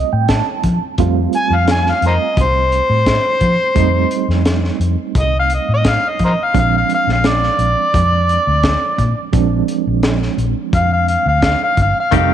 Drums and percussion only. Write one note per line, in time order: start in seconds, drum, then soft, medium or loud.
0.28 kick medium
0.28 snare loud
0.28 closed hi-hat medium
0.63 kick medium
0.63 closed hi-hat medium
0.98 kick loud
0.98 closed hi-hat medium
1.33 closed hi-hat medium
1.68 snare loud
1.68 closed hi-hat medium
1.87 snare soft
2.02 closed hi-hat medium
2.37 kick loud
2.37 closed hi-hat medium
2.72 closed hi-hat medium
3.06 kick medium
3.06 snare loud
3.06 closed hi-hat medium
3.41 kick medium
3.41 closed hi-hat medium
3.76 kick loud
3.76 closed hi-hat medium
4.11 closed hi-hat medium
4.30 snare soft
4.45 snare loud
4.45 closed hi-hat medium
4.65 snare soft
4.81 closed hi-hat medium
5.15 kick loud
5.15 closed hi-hat medium
5.50 closed hi-hat medium
5.84 kick medium
5.84 snare loud
5.84 closed hi-hat medium
6.19 kick medium
6.19 closed hi-hat medium
6.55 kick loud
6.55 closed hi-hat medium
6.89 closed hi-hat medium
7.09 snare soft
7.24 snare loud
7.24 closed hi-hat medium
7.43 snare soft
7.59 closed hi-hat medium
7.94 kick loud
7.94 closed hi-hat medium
8.29 closed hi-hat medium
8.63 kick medium
8.63 snare loud
8.63 closed hi-hat medium
8.99 kick medium
8.99 closed hi-hat medium
9.33 kick loud
9.33 closed hi-hat medium
9.68 closed hi-hat medium
10.03 snare loud
10.03 closed hi-hat medium
10.22 snare soft
10.38 closed hi-hat medium
10.73 kick loud
10.73 closed hi-hat medium
11.08 closed hi-hat medium
11.42 kick medium
11.42 snare loud
11.42 closed hi-hat medium
11.77 kick medium
11.77 closed hi-hat medium
12.12 kick loud
12.12 closed hi-hat medium